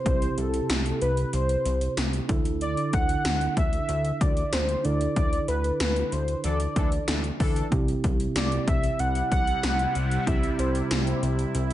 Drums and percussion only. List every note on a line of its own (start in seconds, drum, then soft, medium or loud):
0.06 kick loud
0.06 closed hi-hat medium
0.22 closed hi-hat soft
0.38 closed hi-hat medium
0.54 closed hi-hat medium
0.70 snare loud
0.70 closed hi-hat medium
0.70 tambourine medium
0.86 closed hi-hat soft
1.02 closed hi-hat medium
1.17 closed hi-hat soft
1.33 closed hi-hat medium
1.49 closed hi-hat medium
1.65 closed hi-hat medium
1.81 closed hi-hat medium
1.97 snare loud
1.97 closed hi-hat loud
1.97 tambourine medium
2.13 closed hi-hat soft
2.29 kick loud
2.29 closed hi-hat medium
2.45 closed hi-hat medium
2.61 closed hi-hat medium
2.77 closed hi-hat soft
2.93 kick medium
2.93 closed hi-hat medium
3.09 closed hi-hat medium
3.25 snare loud
3.25 closed hi-hat medium
3.25 tambourine medium
3.41 closed hi-hat soft
3.57 kick loud
3.57 closed hi-hat medium
3.73 closed hi-hat medium
3.89 closed hi-hat medium
4.05 closed hi-hat medium
4.21 kick medium
4.21 closed hi-hat medium
4.37 closed hi-hat soft
4.53 snare medium
4.53 closed hi-hat loud
4.53 tambourine medium
4.69 closed hi-hat soft
4.85 closed hi-hat medium
5.01 closed hi-hat medium
5.16 kick loud
5.16 closed hi-hat medium
5.33 closed hi-hat soft
5.48 closed hi-hat medium
5.64 closed hi-hat medium
5.80 snare loud
5.80 closed hi-hat medium
5.80 tambourine medium
5.96 closed hi-hat soft
6.12 closed hi-hat medium
6.28 closed hi-hat medium
6.44 closed hi-hat loud
6.60 closed hi-hat medium
6.76 kick medium
6.76 closed hi-hat medium
6.92 closed hi-hat medium
7.08 snare loud
7.08 closed hi-hat loud
7.08 tambourine medium
7.24 closed hi-hat medium
7.40 kick loud
7.40 open hi-hat medium
7.56 closed hi-hat medium
7.72 kick loud
7.72 closed hi-hat medium
7.88 closed hi-hat soft
8.04 kick medium
8.04 closed hi-hat medium
8.20 closed hi-hat medium
8.36 snare loud
8.36 closed hi-hat medium
8.36 tambourine medium
8.52 closed hi-hat soft
8.68 kick loud
8.68 closed hi-hat medium
8.84 closed hi-hat medium
8.99 closed hi-hat medium
9.15 closed hi-hat medium
9.32 kick loud
9.32 closed hi-hat medium
9.47 closed hi-hat medium
9.63 snare loud
9.63 closed hi-hat loud
9.63 tambourine medium
9.79 closed hi-hat soft
9.95 closed hi-hat medium
10.11 closed hi-hat medium
10.27 kick loud
10.27 closed hi-hat medium
10.43 closed hi-hat soft
10.59 closed hi-hat medium
10.75 closed hi-hat medium
10.91 snare loud
10.91 closed hi-hat medium
10.91 tambourine medium
11.07 closed hi-hat soft
11.23 closed hi-hat medium
11.39 closed hi-hat medium
11.55 closed hi-hat medium